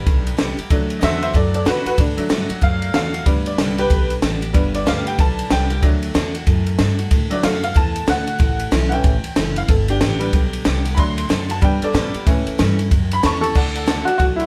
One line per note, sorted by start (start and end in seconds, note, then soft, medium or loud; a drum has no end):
0.00 0.66 G3 medium
0.00 0.66 B3 soft
0.00 0.67 D4 medium
0.06 0.38 B1 loud
0.06 0.36 D3 medium
0.06 kick loud
0.06 ride medium
0.27 ride medium
0.37 0.57 C2 medium
0.37 0.56 D3 medium
0.37 0.57 G3 medium
0.37 0.57 B3 medium
0.37 0.56 G4 medium
0.37 snare loud
0.37 ride medium
0.57 0.70 B3 medium
0.57 0.69 G4 medium
0.57 muted upright bass stroke soft
0.57 ride medium
0.70 1.02 D2 loud
0.70 1.00 D3 loud
0.70 1.94 F#3 medium
0.70 1.94 A3 soft
0.70 1.95 D4 medium
0.70 kick loud
0.70 ride medium
0.90 ride medium
0.99 1.34 E2 loud
0.99 1.32 D3 medium
0.99 1.33 A3 loud
0.99 1.33 D4 loud
0.99 1.33 F#4 loud
0.99 1.21 C5 medium
0.99 1.02 D#5 medium
0.99 snare loud
0.99 ride medium
1.04 1.22 E5 medium
1.22 1.34 C5 medium
1.22 1.35 E5 medium
1.22 ride medium
1.34 1.65 F#2 medium
1.34 1.95 A2 medium
1.34 1.53 A4 medium
1.34 1.54 D5 medium
1.34 kick medium
1.34 ride medium
1.54 1.66 A4 medium
1.54 1.67 D5 medium
1.54 ride medium
1.65 1.85 B2 medium
1.65 1.85 D3 medium
1.65 1.85 A3 medium
1.65 1.85 D4 loud
1.65 1.84 F#4 loud
1.65 1.85 F#4 medium
1.65 1.86 B4 medium
1.65 snare loud
1.65 ride medium
1.85 1.98 D4 soft
1.85 1.97 F#4 medium
1.85 1.98 F#4 medium
1.85 1.99 B4 medium
1.85 muted upright bass stroke soft
1.85 ride medium
1.98 2.17 A2 medium
1.98 2.28 D3 loud
1.98 2.17 D4 medium
1.98 kick loud
1.98 ride medium
2.17 3.22 F#3 medium
2.17 3.22 A3 medium
2.17 3.23 D4 medium
2.17 muted upright bass stroke soft
2.17 ride medium
2.29 2.48 G2 medium
2.29 2.49 D3 medium
2.29 2.49 A3 medium
2.29 2.49 D4 loud
2.29 2.48 F#4 medium
2.29 snare loud
2.29 ride medium
2.49 2.62 D4 medium
2.49 2.61 F#4 medium
2.49 muted upright bass stroke soft
2.49 ride medium
2.61 2.93 F#2 loud
2.61 3.23 A2 medium
2.61 2.94 F5 loud
2.61 kick loud
2.61 ride medium
2.82 ride medium
2.94 3.25 E2 loud
2.94 3.13 D3 medium
2.94 3.13 A3 medium
2.94 3.13 D4 medium
2.94 3.12 F#4 medium
2.94 3.26 F5 loud
2.94 snare loud
2.94 ride medium
3.13 3.26 D4 medium
3.13 3.25 F#4 medium
3.13 ride medium
3.26 3.57 D2 medium
3.26 3.88 G2 medium
3.26 3.75 G3 medium
3.26 3.75 B3 medium
3.26 3.76 D4 medium
3.26 kick loud
3.26 ride medium
3.46 3.78 D5 medium
3.46 ride medium
3.58 3.89 C2 medium
3.58 3.77 D3 medium
3.58 3.77 G3 loud
3.58 3.78 B3 medium
3.58 3.76 G4 loud
3.58 snare loud
3.58 ride medium
3.78 3.90 B3 soft
3.78 3.90 G4 medium
3.78 4.08 G4 medium
3.78 4.10 B4 loud
3.78 ride medium
3.90 4.21 B1 medium
3.90 4.21 D3 medium
3.90 kick loud
3.90 ride medium
4.10 ride medium
4.22 4.53 A1 medium
4.22 4.41 D3 medium
4.22 4.41 G3 medium
4.22 4.41 B3 loud
4.22 4.40 G4 medium
4.22 snare loud
4.22 ride medium
4.41 4.54 B3 medium
4.41 4.53 G4 medium
4.41 ride medium
4.53 4.86 G1 medium
4.53 5.16 G2 loud
4.53 5.78 G3 medium
4.53 5.78 B3 medium
4.53 5.79 D4 medium
4.53 kick loud
4.53 ride medium
4.74 4.87 D5 loud
4.74 ride medium
4.86 5.17 D2 loud
4.86 5.05 D3 medium
4.86 5.06 G3 loud
4.86 5.06 B3 loud
4.86 5.05 G4 loud
4.86 5.06 F5 medium
4.86 snare loud
4.86 ride medium
5.06 5.19 B3 medium
5.06 5.18 G4 medium
5.06 5.19 G5 medium
5.06 ride medium
5.18 5.50 B1 loud
5.18 5.49 D3 medium
5.18 5.51 A5 loud
5.18 kick loud
5.18 ride medium
5.39 ride medium
5.50 5.82 C2 medium
5.50 5.69 D3 medium
5.50 5.70 G3 medium
5.50 5.70 B3 medium
5.50 5.69 G4 loud
5.50 5.82 G5 loud
5.50 snare loud
5.50 ride medium
5.70 5.83 B3 soft
5.70 5.82 G4 medium
5.70 ride medium
5.82 6.14 D2 medium
5.82 6.13 D3 medium
5.82 6.06 F#3 medium
5.82 6.06 A3 medium
5.82 6.07 D4 medium
5.82 kick loud
5.82 ride medium
6.02 ride medium
6.14 6.46 E2 medium
6.14 6.33 D3 loud
6.14 6.34 A3 medium
6.14 6.34 D4 loud
6.14 6.33 F#4 loud
6.14 snare loud
6.14 ride medium
6.34 6.47 D4 soft
6.34 6.46 F#4 medium
6.34 ride medium
6.47 6.78 F#2 loud
6.47 7.09 A2 medium
6.47 kick loud
6.47 ride medium
6.66 ride medium
6.79 7.10 G2 loud
6.79 6.98 D3 loud
6.79 6.98 A3 medium
6.79 6.99 D4 medium
6.79 6.98 F#4 medium
6.79 snare loud
6.79 ride medium
6.99 7.12 D4 soft
6.99 7.11 F#4 medium
6.99 ride medium
7.11 7.30 A2 loud
7.11 7.42 D3 loud
7.11 kick loud
7.11 ride medium
7.30 7.50 F#3 medium
7.30 7.50 A3 medium
7.30 7.51 D4 medium
7.30 7.44 D5 loud
7.30 muted upright bass stroke soft
7.30 ride medium
7.43 7.75 F#2 loud
7.43 7.62 D3 medium
7.43 7.62 A3 medium
7.43 7.63 D4 medium
7.43 7.61 F#4 medium
7.43 7.63 F5 medium
7.43 snare loud
7.43 ride loud
7.62 7.76 D4 medium
7.62 7.75 F#4 medium
7.62 7.76 F5 loud
7.62 ride medium
7.74 8.07 E2 loud
7.74 8.37 A2 medium
7.74 8.08 A5 loud
7.74 kick loud
7.74 ride medium
7.96 ride medium
8.07 8.39 D2 medium
8.07 8.26 D3 medium
8.07 8.27 A3 medium
8.07 8.27 D4 medium
8.07 8.25 F#4 medium
8.07 8.71 F#5 loud
8.07 snare loud
8.07 ride medium
8.27 8.40 D4 soft
8.27 8.39 F#4 medium
8.27 ride medium
8.39 8.71 A1 medium
8.39 9.01 A2 medium
8.39 kick loud
8.39 ride medium
8.59 ride medium
8.71 9.03 B1 loud
8.71 8.91 E3 loud
8.71 8.91 A3 medium
8.71 8.91 C#4 medium
8.71 8.90 E4 loud
8.71 snare loud
8.71 ride medium
8.89 9.11 E3 medium
8.89 9.11 A3 medium
8.89 9.04 C#4 medium
8.89 9.12 C#4 medium
8.89 9.03 E4 medium
8.89 8.91 F#5 medium
8.89 ride medium
8.93 9.55 G5 loud
9.04 9.23 A1 medium
9.04 9.66 E2 medium
9.04 kick loud
9.04 ride medium
9.24 ride medium
9.36 9.68 F#1 loud
9.36 9.55 E3 medium
9.36 9.55 A3 medium
9.36 9.56 C#4 medium
9.36 9.55 E4 loud
9.36 snare loud
9.36 ride medium
9.56 9.69 C#4 medium
9.56 9.68 E4 medium
9.56 9.69 F5 medium
9.56 ride medium
9.68 10.00 G1 loud
9.68 10.31 G2 medium
9.68 9.89 A4 medium
9.68 kick loud
9.68 ride medium
9.88 10.19 D4 medium
9.88 10.83 G4 loud
9.88 ride medium
10.01 10.32 A1 loud
10.01 10.20 D3 medium
10.01 10.20 G3 medium
10.01 10.20 B3 loud
10.01 10.19 G4 medium
10.01 snare loud
10.01 ride medium
10.19 10.39 G3 medium
10.19 10.40 B3 medium
10.19 10.33 B3 medium
10.19 10.40 D4 medium
10.19 10.32 G4 medium
10.19 ride medium
10.33 10.64 B1 loud
10.33 10.63 D3 medium
10.33 kick loud
10.33 ride medium
10.53 ride medium
10.64 10.97 C2 medium
10.64 10.84 D3 medium
10.64 10.84 G3 medium
10.64 10.85 B3 medium
10.64 10.84 G4 loud
10.64 snare loud
10.64 ride medium
10.85 10.98 B3 medium
10.85 10.97 G4 medium
10.85 ride medium
10.95 11.29 D2 loud
10.95 11.28 D3 loud
10.95 11.21 F#3 medium
10.95 11.21 A3 soft
10.95 11.22 D4 medium
10.95 10.97 B5 medium
10.95 kick loud
10.95 ride medium
10.99 11.49 C6 loud
11.18 ride medium
11.29 11.61 F#2 loud
11.29 11.48 D3 medium
11.29 11.49 A3 medium
11.29 11.48 D4 medium
11.29 11.47 F#4 loud
11.29 snare loud
11.29 ride medium
11.49 11.62 D4 medium
11.49 11.61 F#4 medium
11.49 11.62 A5 medium
11.49 ride medium
11.61 12.24 G2 medium
11.61 11.81 G2 medium
11.61 12.23 G3 medium
11.61 12.23 B3 medium
11.61 12.24 D4 medium
11.61 11.82 G5 medium
11.61 kick loud
11.61 ride medium
11.82 12.13 A4 medium
11.82 12.14 D5 loud
11.82 muted upright bass stroke soft
11.82 ride medium
11.93 12.13 B2 loud
11.93 12.13 D3 medium
11.93 12.13 G3 medium
11.93 12.13 B3 medium
11.93 12.12 G4 loud
11.93 snare loud
11.93 ride medium
12.14 12.27 B3 medium
12.14 12.26 G4 medium
12.14 muted upright bass stroke soft
12.14 ride medium
12.27 12.45 A2 medium
12.27 12.89 A2 loud
12.27 12.76 E3 medium
12.27 12.76 A3 medium
12.27 12.77 C#4 medium
12.27 kick loud
12.27 ride medium
12.47 muted upright bass stroke soft
12.47 ride medium
12.58 12.90 G2 loud
12.58 12.78 E3 medium
12.58 12.78 A3 loud
12.58 12.78 C#4 medium
12.58 12.78 E4 loud
12.58 snare loud
12.58 ride medium
12.79 12.91 C#4 medium
12.79 12.91 E4 medium
12.79 ride medium
12.91 13.53 E2 medium
12.91 13.22 F#2 loud
12.91 kick loud
12.91 ride medium
13.11 13.24 B5 loud
13.11 ride medium
13.23 13.55 E2 loud
13.23 13.42 E3 medium
13.23 13.42 A3 medium
13.23 13.42 C#4 medium
13.23 13.41 E4 medium
13.23 13.54 A5 medium
13.23 13.56 C#6 loud
13.23 snare loud
13.23 ride medium
13.41 13.55 C#4 soft
13.41 13.55 E4 medium
13.41 14.08 A4 loud
13.41 ride medium
13.55 14.00 D2 medium
13.55 13.85 D3 loud
13.55 13.67 D5 medium
13.55 13.68 F#5 medium
13.55 13.68 A5 loud
13.55 kick loud
13.55 crash loud
13.75 13.83 D5 medium
13.75 13.83 F#5 medium
13.75 13.83 A5 medium
13.75 ride medium
13.86 14.06 D3 loud
13.86 14.06 A3 loud
13.86 14.06 D4 loud
13.86 14.05 F#4 loud
13.86 13.99 D5 medium
13.86 14.00 F#5 medium
13.86 14.00 A5 loud
13.86 snare loud
13.86 ride medium
14.05 14.19 D4 medium
14.05 14.16 F#4 loud
14.05 14.19 F#4 medium
14.05 14.14 D5 loud
14.05 14.15 F#5 medium
14.05 14.15 A5 loud
14.05 ride medium
14.18 14.46 B1 medium
14.18 14.46 A2 medium
14.18 14.23 F#4 loud
14.18 14.31 D5 medium
14.18 14.32 F#5 medium
14.18 14.32 A5 medium
14.18 kick loud
14.18 ride medium
14.36 14.46 E4 medium
14.36 14.46 D5 medium
14.36 14.46 F#5 medium
14.36 14.46 C6 medium
14.36 ride medium